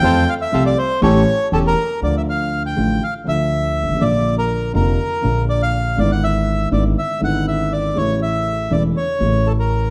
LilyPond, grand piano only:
\new Staff \with { instrumentName = "Grand piano" } { \clef bass \time 4/4 \key a \phrygian \tempo 4 = 121 << { <f, f a c' a'>8 r8 <c, c f a c' a'>8 r8 <a,, a, e a cis' g'>8 r8 <e,, e, e a cis' g'>8 r8 | \key d \minor <d, d f a f'>4. <a,, a, d f a f'>8 r8 <d, d f a f'>4. | <bes,, bes, d f bes f'>4. <f,, f, d f bes f'>8 r8 <bes,, bes, d f bes f'>4. | <gis,, gis, d gis b e'>4. <gis,, gis, d gis b e'>8 r8 <gis,, gis, d gis b e'>4. |
<a,, a, cis e a e'>4. <e,, e, cis e a e'>8 r8 <a,, a, cis e cis' e'>4. | } \\ { r1 | r2. r8 r32 g,,32 gis,,32 a,,32 | r1 | r1 |
r1 | } >> }